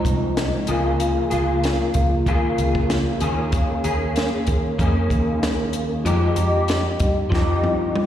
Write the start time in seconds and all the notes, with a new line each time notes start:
Already playing: G#2 F3 C4 D#4
0.05 C2, kick, closed hi-hat
0.37 snare, closed hi-hat
0.67 C#2 C#3 A#3 F4 G#4, closed hi-hat
1.00 closed hi-hat
1.30 C#2 A#3 F4 G#4, closed hi-hat
1.64 snare, closed hi-hat
1.94 C#2, kick, closed hi-hat
2.26 D#2 C#3 A#3 F4 G#4, kick, closed hi-hat
2.58 C#2, closed hi-hat
2.75 kick
2.90 snare, closed hi-hat
3.20 D#2 D#3 A#3 C#4 G#4, closed hi-hat
3.52 kick, closed hi-hat
3.84 D#2 A#3 C#4 G#4, closed hi-hat
4.16 snare, closed hi-hat
4.47 D#2, kick, closed hi-hat
4.79 F2 D#3 A#3 C#4, kick, closed hi-hat
4.84 G#4
5.10 D#2, kick, closed hi-hat
5.43 snare, closed hi-hat
5.73 closed hi-hat
6.05 F2 F3 G#3 D#4 G4, closed hi-hat
6.36 F2 D#4 G4, closed hi-hat
6.68 snare, closed hi-hat
7.00 G2, kick, closed hi-hat
7.30 F2 F3 D#4, kick, snare
7.34 G4
7.64 G2, high tom
7.96 mid tom